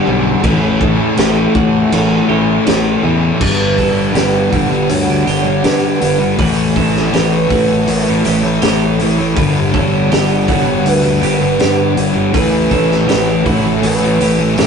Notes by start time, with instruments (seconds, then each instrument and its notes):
Already playing: distorted electric guitar G2, overdriven electric guitar D3, analog synth pad G3 F#5 B5 D6, soft synth lead G4, clean electric guitar G4
0.06 fingered electric bass B1, overdriven electric guitar G2 G3 B3 D4, distorted electric guitar D3
0.41 fingered electric bass A1, overdriven electric guitar A2 E3, soft synth lead A4, analog synth pad A4 E5 B5 C#6, clean electric guitar B4, kick, crash
0.45 overdriven electric guitar A3 C#4 E4
0.80 distorted electric guitar E3, overdriven electric guitar A3 C#4 E4, clean electric guitar A4, kick
1.17 fingered electric bass A1, distorted electric guitar A2, overdriven electric guitar E3 A3 C#4, clean electric guitar G4, snare, crash
1.21 overdriven electric guitar E4
1.54 fingered electric bass A1, distorted electric guitar E3 A3, clean electric guitar F#4, kick
1.91 fingered electric bass A1, distorted electric guitar A2 E3 A3, crash
2.29 fingered electric bass A1, distorted electric guitar E3, overdriven electric guitar A3 C#4 E4, clean electric guitar G4
2.65 fingered electric bass A1, distorted electric guitar A2, overdriven electric guitar E3 A3 C#4, clean electric guitar G4, snare, crash
2.69 overdriven electric guitar E4
3.02 fingered electric bass E2, overdriven electric guitar A2 C#4 E4, distorted electric guitar E3 A3
3.06 overdriven electric guitar A3
3.39 fingered electric bass G1, overdriven electric guitar G2 D3 G3 B3, analog synth pad G3 F#5 B5, clean electric guitar B4, kick, crash
3.43 overdriven electric guitar D4, soft synth lead B4
3.76 fingered electric bass G1, distorted electric guitar G2 D3 G3, clean electric guitar A4, kick, open hi-hat
3.96 overdriven electric guitar G3 B3 D4
4.15 fingered electric bass G1, overdriven electric guitar G2 D3 G3 B3 D4, clean electric guitar G4, soft synth lead B4, snare, open hi-hat
4.50 fingered electric bass G1, distorted electric guitar G2, overdriven electric guitar D3 G3, clean electric guitar F#4, kick, open hi-hat
4.55 overdriven electric guitar B3 D4
4.69 distorted electric guitar D3 G3, muted overdriven electric guitar stroke
4.90 fingered electric bass D2, soft synth lead C#5, open hi-hat
5.06 distorted electric guitar D3 G3, overdriven electric guitar B3 D4
5.12 overdriven electric guitar G3
5.25 fingered electric bass G1, distorted electric guitar G2, overdriven electric guitar D3 G3, clean electric guitar G4, open hi-hat
5.29 overdriven electric guitar B3 D4
5.45 distorted electric guitar D3 G3, muted overdriven electric guitar stroke
5.64 fingered electric bass G2, overdriven electric guitar G2 D3 G3 B3 D4, clean electric guitar G4, soft synth lead B4, snare, open hi-hat
5.83 overdriven electric guitar G3 B3 D4
6.00 fingered electric bass G1, distorted electric guitar G2, overdriven electric guitar D3 G3 B3, open hi-hat
6.05 overdriven electric guitar D4
6.19 distorted electric guitar D3 G3
6.37 fingered electric bass A1, overdriven electric guitar A2 E3 A3 C#4, analog synth pad A4 E5 C#6, soft synth lead A4, clean electric guitar B4, kick, open hi-hat
6.41 overdriven electric guitar E4
6.76 fingered electric bass A1, distorted electric guitar A2 E3 A3, clean electric guitar A4, kick, open hi-hat
6.95 overdriven electric guitar A3 C#4 E4, snare
7.13 fingered electric bass A1, overdriven electric guitar A2 E3 A3 C#4 E4, clean electric guitar G4, soft synth lead B4, snare, open hi-hat
7.49 fingered electric bass A1, distorted electric guitar A2, overdriven electric guitar E3 A3 C#4 E4, clean electric guitar F#4, kick, open hi-hat
7.55 overdriven electric guitar E4
7.68 distorted electric guitar E3 A3, muted overdriven electric guitar stroke
7.88 fingered electric bass A1, open hi-hat
8.06 distorted electric guitar E3 A3, overdriven electric guitar C#4 E4
8.11 overdriven electric guitar A3
8.25 fingered electric bass A1, distorted electric guitar A2, overdriven electric guitar E3 A3 C#4 E4, clean electric guitar G4, open hi-hat
8.43 distorted electric guitar E3 A3, muted overdriven electric guitar stroke
8.62 fingered electric bass A1, overdriven electric guitar A2 E3 A3 C#4, clean electric guitar G4, snare, open hi-hat
8.66 overdriven electric guitar E4
8.82 overdriven electric guitar A3 C#4 E4
8.99 distorted electric guitar A2, overdriven electric guitar E3 A3 C#4 E4, open hi-hat
9.18 distorted electric guitar E3 A3
9.35 fingered electric bass G1, overdriven electric guitar G2 D3 G3, analog synth pad G3 F#5, clean electric guitar B4, kick, open hi-hat
9.39 overdriven electric guitar B3 D4
9.73 fingered electric bass G1, distorted electric guitar G2 D3 G3, clean electric guitar A4, soft synth lead C#5, kick, open hi-hat
9.93 overdriven electric guitar G3 B3 D4
10.10 fingered electric bass G1, overdriven electric guitar G2 D3 G3 B3 D4, clean electric guitar G4, soft synth lead D5, snare, open hi-hat
10.48 fingered electric bass G1, distorted electric guitar G2, overdriven electric guitar D3 G3 B3 D4, clean electric guitar F#4, soft synth lead C#5, kick, open hi-hat
10.65 distorted electric guitar D3 G3, muted overdriven electric guitar stroke
10.86 fingered electric bass D2, soft synth lead B4, open hi-hat
11.04 distorted electric guitar D3, overdriven electric guitar G3 B3 D4
11.21 fingered electric bass G1, distorted electric guitar G2, overdriven electric guitar D3 G3, clean electric guitar G4, open hi-hat
11.26 overdriven electric guitar B3 D4
11.40 distorted electric guitar D3 G3, muted overdriven electric guitar stroke
11.60 overdriven electric guitar G2 D3 G3 B3 D4, fingered electric bass G2, clean electric guitar G4, snare, open hi-hat
11.79 overdriven electric guitar G3 B3 D4
11.95 fingered electric bass G1, distorted electric guitar G2, overdriven electric guitar D3 G3, open hi-hat
11.99 overdriven electric guitar B3 D4, soft synth lead C#5
12.14 distorted electric guitar D3 G3
12.34 fingered electric bass A1, overdriven electric guitar A2 E3 A3 C#4 E4, analog synth pad A4 E5 C#6, clean electric guitar B4, soft synth lead B4, kick, open hi-hat
12.70 fingered electric bass A1, distorted electric guitar A2 E3 A3, clean electric guitar A4, kick, open hi-hat
12.91 overdriven electric guitar A3 C#4 E4, snare
13.08 fingered electric bass A1, overdriven electric guitar A2 E3 A3 C#4, clean electric guitar G4, snare, open hi-hat
13.12 overdriven electric guitar E4
13.44 fingered electric bass A1, distorted electric guitar A2, overdriven electric guitar E3 A3, clean electric guitar F#4, kick, open hi-hat
13.48 overdriven electric guitar C#4 E4, soft synth lead C#5
13.64 distorted electric guitar E3 A3, muted overdriven electric guitar stroke
13.83 fingered electric bass A1, open hi-hat
13.87 soft synth lead B4
14.01 distorted electric guitar E3 A3, overdriven electric guitar C#4 E4
14.05 overdriven electric guitar A3
14.19 fingered electric bass A1, distorted electric guitar A2, overdriven electric guitar E3 A3 C#4 E4, clean electric guitar G4, open hi-hat
14.39 distorted electric guitar E3 A3, muted overdriven electric guitar stroke
14.57 fingered electric bass A1, overdriven electric guitar A2 E3 A3 C#4 E4, clean electric guitar G4, snare, open hi-hat